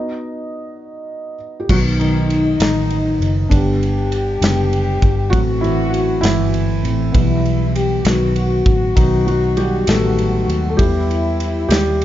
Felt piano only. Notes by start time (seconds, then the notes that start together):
Already playing: B3 D#4 F#4 D#5
1.60 G4
1.69 D#3 F#3 B3 F#4
1.99 D#3 D#4
2.60 D#3 D#4
3.49 D3 G3 B3 D4
4.41 D3 G3 B3
5.30 E3 F#3 A3 C4 F#4
5.61 E3 E4
6.21 E3 E4
6.85 E3 A3 C4
7.12 B2 E3 G3 B3
8.06 D#3 F#3 B3
8.96 D#3 F#3 B3 D#4
9.26 F#3 F#4
9.57 G3 G4
9.88 D#3 F#3 A3 B3 A4
10.69 A4
10.77 G3 B3 E4 G4
11.68 G3 G4